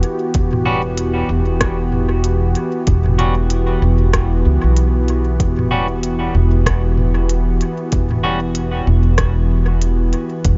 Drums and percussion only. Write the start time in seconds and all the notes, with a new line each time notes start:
0.03 closed hi-hat
0.34 kick, closed hi-hat
0.53 mid tom
0.66 mid tom
0.97 closed hi-hat
1.61 kick, cross-stick, closed hi-hat
1.92 mid tom
2.24 closed hi-hat
2.55 closed hi-hat
2.87 kick, closed hi-hat
3.06 mid tom
3.19 closed hi-hat, mid tom
3.50 closed hi-hat
4.13 kick, cross-stick, closed hi-hat
4.76 closed hi-hat
5.08 closed hi-hat
5.40 kick, closed hi-hat
5.59 mid tom
5.71 mid tom
6.03 closed hi-hat
6.66 kick, cross-stick, closed hi-hat
6.97 mid tom
7.29 closed hi-hat
7.61 closed hi-hat
7.92 kick, closed hi-hat
8.11 mid tom
8.55 closed hi-hat
9.18 kick, cross-stick, closed hi-hat
9.82 closed hi-hat
10.13 closed hi-hat
10.45 kick, closed hi-hat